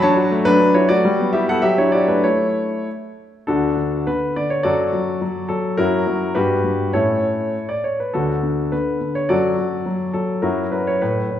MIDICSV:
0, 0, Header, 1, 2, 480
1, 0, Start_track
1, 0, Key_signature, 2, "major"
1, 0, Tempo, 578592
1, 855, Time_signature, 2, 2, 24, 8
1, 1343, Tempo, 612245
1, 3263, Tempo, 570885
1, 5183, Tempo, 591716
1, 7103, Tempo, 574713
1, 9340, End_track
2, 0, Start_track
2, 0, Title_t, "Grand piano"
2, 0, Program_c, 0, 0
2, 0, Note_on_c, 0, 54, 82
2, 19, Note_on_c, 0, 81, 95
2, 27, Note_on_c, 0, 62, 62
2, 27, Note_on_c, 0, 73, 76
2, 80, Control_c, 0, 64, 127
2, 136, Note_on_c, 0, 66, 57
2, 214, Note_off_c, 0, 62, 0
2, 259, Note_on_c, 0, 57, 65
2, 328, Note_off_c, 0, 66, 0
2, 357, Note_off_c, 0, 73, 0
2, 371, Note_off_c, 0, 54, 0
2, 374, Note_on_c, 0, 71, 106
2, 378, Note_off_c, 0, 81, 0
2, 383, Note_on_c, 0, 54, 66
2, 387, Control_c, 0, 64, 0
2, 392, Note_on_c, 0, 62, 78
2, 449, Note_off_c, 0, 57, 0
2, 484, Note_off_c, 0, 62, 0
2, 496, Note_on_c, 0, 62, 56
2, 613, Note_off_c, 0, 71, 0
2, 617, Note_on_c, 0, 66, 61
2, 617, Note_on_c, 0, 73, 78
2, 623, Note_on_c, 0, 64, 60
2, 687, Note_off_c, 0, 62, 0
2, 730, Note_off_c, 0, 64, 0
2, 730, Note_off_c, 0, 66, 0
2, 735, Note_off_c, 0, 73, 0
2, 735, Note_on_c, 0, 74, 94
2, 738, Note_on_c, 0, 57, 55
2, 742, Note_on_c, 0, 66, 72
2, 844, Note_off_c, 0, 54, 0
2, 857, Note_off_c, 0, 57, 0
2, 870, Note_on_c, 0, 55, 75
2, 985, Note_on_c, 0, 59, 59
2, 1022, Control_c, 0, 64, 127
2, 1076, Note_off_c, 0, 66, 0
2, 1098, Note_off_c, 0, 74, 0
2, 1101, Note_on_c, 0, 76, 83
2, 1109, Note_on_c, 0, 64, 51
2, 1113, Note_on_c, 0, 67, 65
2, 1175, Note_off_c, 0, 59, 0
2, 1220, Note_off_c, 0, 67, 0
2, 1222, Note_off_c, 0, 76, 0
2, 1238, Note_on_c, 0, 59, 53
2, 1238, Note_on_c, 0, 78, 92
2, 1245, Note_on_c, 0, 69, 69
2, 1300, Note_off_c, 0, 64, 0
2, 1336, Note_off_c, 0, 55, 0
2, 1344, Note_on_c, 0, 76, 95
2, 1348, Note_off_c, 0, 69, 0
2, 1350, Control_c, 0, 64, 0
2, 1352, Note_off_c, 0, 59, 0
2, 1352, Note_off_c, 0, 78, 0
2, 1352, Note_on_c, 0, 54, 64
2, 1352, Note_on_c, 0, 67, 67
2, 1458, Note_off_c, 0, 67, 0
2, 1461, Note_off_c, 0, 76, 0
2, 1470, Note_on_c, 0, 62, 48
2, 1471, Note_on_c, 0, 73, 77
2, 1481, Note_on_c, 0, 64, 59
2, 1483, Control_c, 0, 64, 127
2, 1578, Note_on_c, 0, 74, 78
2, 1583, Note_off_c, 0, 64, 0
2, 1586, Note_off_c, 0, 73, 0
2, 1587, Note_on_c, 0, 66, 59
2, 1658, Note_off_c, 0, 62, 0
2, 1697, Note_off_c, 0, 66, 0
2, 1701, Note_off_c, 0, 74, 0
2, 1704, Note_on_c, 0, 57, 45
2, 1706, Note_on_c, 0, 71, 69
2, 1719, Note_on_c, 0, 62, 51
2, 1816, Note_off_c, 0, 54, 0
2, 1818, Note_off_c, 0, 57, 0
2, 1826, Note_off_c, 0, 62, 0
2, 1828, Note_off_c, 0, 71, 0
2, 1828, Note_on_c, 0, 73, 73
2, 1830, Note_on_c, 0, 57, 56
2, 1832, Note_on_c, 0, 64, 58
2, 1833, Control_c, 0, 64, 0
2, 1991, Control_c, 0, 64, 127
2, 2174, Note_off_c, 0, 57, 0
2, 2292, Note_off_c, 0, 64, 0
2, 2321, Note_off_c, 0, 73, 0
2, 2326, Control_c, 0, 64, 0
2, 2795, Note_on_c, 0, 69, 70
2, 2801, Note_on_c, 0, 50, 59
2, 2802, Note_on_c, 0, 38, 49
2, 2805, Note_on_c, 0, 62, 57
2, 2807, Note_on_c, 0, 66, 56
2, 2946, Control_c, 0, 64, 127
2, 3017, Note_off_c, 0, 50, 0
2, 3027, Note_off_c, 0, 38, 0
2, 3029, Note_on_c, 0, 50, 42
2, 3235, Note_off_c, 0, 62, 0
2, 3235, Note_off_c, 0, 66, 0
2, 3255, Note_off_c, 0, 50, 0
2, 3261, Note_off_c, 0, 69, 0
2, 3263, Note_on_c, 0, 71, 73
2, 3269, Note_on_c, 0, 50, 48
2, 3273, Control_c, 0, 64, 0
2, 3502, Note_off_c, 0, 50, 0
2, 3508, Note_off_c, 0, 71, 0
2, 3512, Note_on_c, 0, 74, 71
2, 3514, Note_on_c, 0, 50, 48
2, 3628, Note_on_c, 0, 73, 70
2, 3632, Note_off_c, 0, 74, 0
2, 3738, Note_on_c, 0, 74, 81
2, 3746, Note_off_c, 0, 50, 0
2, 3748, Note_on_c, 0, 42, 51
2, 3748, Note_on_c, 0, 54, 56
2, 3748, Note_on_c, 0, 66, 64
2, 3750, Note_off_c, 0, 73, 0
2, 3752, Note_on_c, 0, 69, 62
2, 3909, Control_c, 0, 64, 127
2, 3975, Note_off_c, 0, 54, 0
2, 3981, Note_off_c, 0, 42, 0
2, 3987, Note_on_c, 0, 54, 47
2, 4215, Note_off_c, 0, 54, 0
2, 4228, Note_on_c, 0, 54, 50
2, 4235, Control_c, 0, 64, 0
2, 4431, Note_off_c, 0, 66, 0
2, 4432, Note_off_c, 0, 69, 0
2, 4452, Note_off_c, 0, 54, 0
2, 4455, Note_on_c, 0, 69, 70
2, 4459, Note_off_c, 0, 74, 0
2, 4465, Note_on_c, 0, 54, 49
2, 4694, Note_off_c, 0, 54, 0
2, 4698, Note_off_c, 0, 69, 0
2, 4698, Note_on_c, 0, 70, 89
2, 4706, Note_on_c, 0, 54, 64
2, 4707, Note_on_c, 0, 42, 55
2, 4713, Note_on_c, 0, 64, 66
2, 4713, Note_on_c, 0, 66, 61
2, 4861, Control_c, 0, 64, 127
2, 4936, Note_off_c, 0, 54, 0
2, 4937, Note_off_c, 0, 42, 0
2, 4949, Note_on_c, 0, 54, 49
2, 5156, Note_off_c, 0, 64, 0
2, 5156, Note_off_c, 0, 66, 0
2, 5180, Note_on_c, 0, 71, 79
2, 5181, Note_off_c, 0, 54, 0
2, 5182, Note_off_c, 0, 70, 0
2, 5186, Note_on_c, 0, 67, 61
2, 5187, Note_on_c, 0, 66, 63
2, 5188, Note_on_c, 0, 43, 59
2, 5195, Control_c, 0, 64, 0
2, 5325, Control_c, 0, 64, 127
2, 5403, Note_off_c, 0, 43, 0
2, 5415, Note_on_c, 0, 43, 47
2, 5632, Note_off_c, 0, 67, 0
2, 5633, Note_off_c, 0, 66, 0
2, 5653, Note_off_c, 0, 43, 0
2, 5654, Note_on_c, 0, 57, 38
2, 5655, Note_on_c, 0, 73, 73
2, 5658, Note_on_c, 0, 45, 50
2, 5659, Note_on_c, 0, 61, 41
2, 5659, Note_on_c, 0, 69, 56
2, 5662, Note_off_c, 0, 71, 0
2, 5665, Note_on_c, 0, 64, 56
2, 5674, Control_c, 0, 64, 0
2, 5843, Control_c, 0, 64, 127
2, 5998, Note_off_c, 0, 45, 0
2, 6045, Note_off_c, 0, 57, 0
2, 6047, Note_off_c, 0, 61, 0
2, 6154, Control_c, 0, 64, 0
2, 6233, Note_off_c, 0, 69, 0
2, 6236, Note_off_c, 0, 64, 0
2, 6263, Note_off_c, 0, 73, 0
2, 6267, Note_on_c, 0, 74, 63
2, 6388, Note_off_c, 0, 74, 0
2, 6391, Note_on_c, 0, 73, 55
2, 6509, Note_off_c, 0, 73, 0
2, 6519, Note_on_c, 0, 71, 53
2, 6630, Note_on_c, 0, 69, 63
2, 6633, Note_off_c, 0, 71, 0
2, 6637, Note_on_c, 0, 38, 46
2, 6637, Note_on_c, 0, 62, 46
2, 6640, Note_on_c, 0, 50, 49
2, 6642, Note_on_c, 0, 66, 51
2, 6761, Control_c, 0, 64, 127
2, 6860, Note_off_c, 0, 50, 0
2, 6864, Note_off_c, 0, 38, 0
2, 6872, Note_on_c, 0, 50, 36
2, 7077, Note_off_c, 0, 62, 0
2, 7079, Note_off_c, 0, 66, 0
2, 7097, Note_off_c, 0, 50, 0
2, 7105, Note_on_c, 0, 71, 66
2, 7106, Note_off_c, 0, 69, 0
2, 7110, Note_on_c, 0, 50, 45
2, 7116, Control_c, 0, 64, 0
2, 7336, Note_off_c, 0, 50, 0
2, 7348, Note_on_c, 0, 50, 41
2, 7465, Note_on_c, 0, 73, 67
2, 7467, Note_off_c, 0, 71, 0
2, 7579, Note_off_c, 0, 50, 0
2, 7580, Note_on_c, 0, 74, 77
2, 7585, Note_off_c, 0, 73, 0
2, 7586, Note_on_c, 0, 54, 52
2, 7588, Note_on_c, 0, 42, 48
2, 7588, Note_on_c, 0, 69, 57
2, 7590, Note_on_c, 0, 66, 62
2, 7755, Control_c, 0, 64, 127
2, 7816, Note_off_c, 0, 54, 0
2, 7817, Note_off_c, 0, 42, 0
2, 7829, Note_on_c, 0, 54, 43
2, 8044, Note_off_c, 0, 54, 0
2, 8057, Note_on_c, 0, 54, 48
2, 8064, Control_c, 0, 64, 0
2, 8261, Note_off_c, 0, 69, 0
2, 8262, Note_off_c, 0, 66, 0
2, 8279, Note_off_c, 0, 54, 0
2, 8286, Note_on_c, 0, 69, 61
2, 8291, Note_off_c, 0, 74, 0
2, 8292, Note_on_c, 0, 54, 43
2, 8517, Note_off_c, 0, 54, 0
2, 8526, Note_on_c, 0, 70, 68
2, 8527, Note_off_c, 0, 69, 0
2, 8529, Note_on_c, 0, 42, 47
2, 8530, Note_on_c, 0, 54, 56
2, 8534, Note_on_c, 0, 64, 54
2, 8535, Note_on_c, 0, 66, 54
2, 8691, Control_c, 0, 64, 127
2, 8757, Note_off_c, 0, 64, 0
2, 8758, Note_off_c, 0, 66, 0
2, 8764, Note_off_c, 0, 42, 0
2, 8765, Note_off_c, 0, 54, 0
2, 8770, Note_off_c, 0, 70, 0
2, 8772, Note_on_c, 0, 71, 60
2, 8779, Note_on_c, 0, 54, 43
2, 8894, Note_off_c, 0, 71, 0
2, 8902, Note_on_c, 0, 73, 66
2, 9013, Note_off_c, 0, 54, 0
2, 9020, Note_on_c, 0, 71, 65
2, 9021, Note_off_c, 0, 73, 0
2, 9024, Note_on_c, 0, 45, 52
2, 9028, Control_c, 0, 64, 0
2, 9157, Control_c, 0, 64, 127
2, 9253, Note_off_c, 0, 45, 0
2, 9266, Note_on_c, 0, 45, 39
2, 9340, Note_off_c, 0, 45, 0
2, 9340, Note_off_c, 0, 71, 0
2, 9340, End_track
0, 0, End_of_file